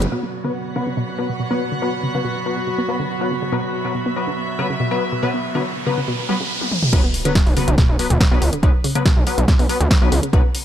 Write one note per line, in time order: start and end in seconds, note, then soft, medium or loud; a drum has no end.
0.00 0.11 B2 medium
0.00 0.05 C#3 medium
0.00 0.11 F#3 medium
0.00 closed hi-hat medium
0.12 0.15 B2 medium
0.12 6.50 B2 medium
0.12 6.50 F#3 medium
0.12 0.20 F#3 medium
0.12 6.50 B3 medium
0.12 0.20 B3 medium
0.12 0.20 B4 loud
0.20 0.26 B3 medium
0.20 6.50 F#4 medium
0.44 0.52 D3 medium
0.44 0.52 F#3 medium
0.44 0.52 B3 medium
0.44 0.52 B4 medium
0.44 3.77 F#5 medium
0.70 6.50 B5 medium
0.76 0.84 C#3 medium
0.76 0.89 F#3 medium
0.76 0.89 B3 medium
0.76 0.89 B4 medium
0.87 0.90 C#3 medium
0.97 1.02 B2 loud
1.18 1.27 F#3 medium
1.18 1.27 B3 medium
1.18 1.27 B4 medium
1.29 1.32 B2 medium
1.40 1.43 B2 medium
1.51 1.63 F#3 medium
1.51 1.54 B3 medium
1.51 1.63 B3 medium
1.51 1.63 B4 loud
1.72 1.79 D3 medium
1.82 1.91 F#3 medium
1.82 1.91 B3 medium
1.82 1.91 B4 loud
2.03 2.11 C#3 medium
2.15 2.17 C#3 medium
2.15 2.22 F#3 medium
2.15 2.22 B3 medium
2.15 2.22 B4 medium
2.25 2.30 B2 loud
2.46 2.59 F#3 medium
2.46 2.59 B3 medium
2.46 2.59 B4 medium
2.57 2.60 B2 medium
2.67 2.70 B2 medium
2.78 2.81 B3 medium
2.89 2.97 F#3 medium
2.89 2.97 B3 medium
2.89 2.97 B4 medium
3.00 3.07 D3 medium
3.21 3.34 F#3 medium
3.21 3.34 B3 medium
3.21 3.34 B4 medium
3.31 3.39 C#3 medium
3.42 3.45 C#3 medium
3.52 3.58 B2 loud
3.52 3.61 F#3 medium
3.52 3.61 B3 medium
3.52 3.61 B4 loud
3.52 riser medium
3.65 6.50 E5 medium
3.85 3.88 B2 medium
3.85 3.93 F#3 medium
3.85 3.93 B3 medium
3.85 3.93 B4 medium
3.95 3.98 B2 medium
4.06 4.09 B3 medium
4.16 4.30 F#3 medium
4.16 4.30 B3 medium
4.16 4.30 B4 medium
4.27 4.35 D3 medium
4.59 4.67 C#3 medium
4.59 4.67 F#3 medium
4.59 4.67 B3 medium
4.59 4.67 B4 loud
4.70 4.73 C#3 medium
4.80 4.85 B2 loud
4.91 5.04 F#3 medium
4.91 5.04 B3 medium
4.91 5.04 B4 loud
5.12 5.15 B2 medium
5.23 5.26 B2 medium
5.23 5.31 F#3 medium
5.23 5.31 B3 medium
5.23 5.31 B4 loud
5.34 5.37 B3 medium
5.55 5.62 D3 medium
5.55 5.63 F#3 medium
5.55 5.63 B3 medium
5.55 5.63 B4 medium
5.87 5.94 C#3 medium
5.87 6.00 F#3 medium
5.87 6.00 B3 medium
5.87 6.00 B4 medium
5.98 6.01 C#3 medium
6.08 6.13 B2 loud
6.29 6.37 F#3 medium
6.29 6.34 G3 loud
6.29 6.37 B3 medium
6.29 6.37 B4 medium
6.40 6.43 C#3 medium
6.61 high tom soft
6.72 mid tom medium
6.83 mid tom medium
6.93 7.01 B1 loud
6.93 6.96 B2 medium
6.93 7.01 F#3 medium
6.93 7.01 B3 medium
6.93 7.01 B4 loud
6.93 kick loud
6.93 closed hi-hat medium
6.93 crash loud
6.93 impact medium
7.04 7.07 B3 medium
7.14 open hi-hat loud
7.25 7.32 D3 medium
7.25 7.33 F#3 medium
7.25 7.33 B3 medium
7.25 7.33 B4 medium
7.25 closed hi-hat medium
7.35 kick loud
7.35 snare loud
7.35 closed hi-hat medium
7.46 7.54 B1 medium
7.46 open hi-hat medium
7.57 7.65 C#3 medium
7.57 7.70 F#3 medium
7.57 7.70 B3 medium
7.57 7.70 B4 loud
7.57 open hi-hat loud
7.68 7.75 B1 loud
7.68 7.71 C#3 medium
7.68 closed hi-hat medium
7.78 7.83 B2 loud
7.78 kick loud
7.78 snare medium
7.78 closed hi-hat medium
7.89 7.97 B1 loud
7.99 8.08 F#3 medium
7.99 8.08 B3 medium
7.99 8.08 B4 medium
7.99 open hi-hat loud
8.10 8.18 D2 loud
8.10 8.13 B2 medium
8.10 closed hi-hat medium
8.20 8.24 B2 medium
8.20 kick loud
8.20 snare loud
8.20 closed hi-hat medium
8.31 8.39 B1 medium
8.31 8.44 F#3 medium
8.31 8.34 B3 medium
8.31 8.44 B3 medium
8.31 8.44 B4 loud
8.42 8.50 C#2 loud
8.42 open hi-hat loud
8.53 8.60 D3 medium
8.53 closed hi-hat medium
8.63 8.71 B1 loud
8.63 8.71 F#3 loud
8.63 8.71 B3 medium
8.63 8.71 B4 loud
8.63 kick loud
8.63 closed hi-hat medium
8.84 8.92 C#3 medium
8.84 open hi-hat loud
8.95 8.98 C#3 medium
8.95 9.03 F#3 medium
8.95 9.03 B3 medium
8.95 9.03 B4 medium
8.95 closed hi-hat medium
9.06 9.11 B2 loud
9.06 kick loud
9.06 snare loud
9.06 closed hi-hat medium
9.17 9.24 B1 medium
9.27 9.40 F#3 medium
9.27 9.40 B3 medium
9.27 9.40 B4 medium
9.27 open hi-hat loud
9.38 9.46 B1 loud
9.38 9.41 B2 medium
9.38 closed hi-hat medium
9.48 9.51 B2 medium
9.48 kick loud
9.48 snare medium
9.48 closed hi-hat medium
9.59 9.67 B1 loud
9.59 9.62 B3 medium
9.59 open hi-hat medium
9.69 9.78 F#3 medium
9.69 9.78 B3 medium
9.69 9.78 B4 loud
9.69 open hi-hat loud
9.80 9.88 D2 loud
9.80 9.88 D3 medium
9.80 closed hi-hat medium
9.91 kick loud
9.91 snare loud
9.91 closed hi-hat medium
10.02 10.09 B1 medium
10.02 10.14 F#3 medium
10.02 10.14 B3 medium
10.02 10.14 B4 loud
10.12 10.20 C#2 medium
10.12 10.20 C#3 medium
10.12 open hi-hat loud
10.23 10.26 C#3 medium
10.23 closed hi-hat medium
10.33 10.42 B1 loud
10.33 10.38 B2 loud
10.33 10.42 F#3 loud
10.33 10.42 B3 medium
10.33 10.42 B4 loud
10.33 kick loud
10.33 closed hi-hat medium
10.55 open hi-hat loud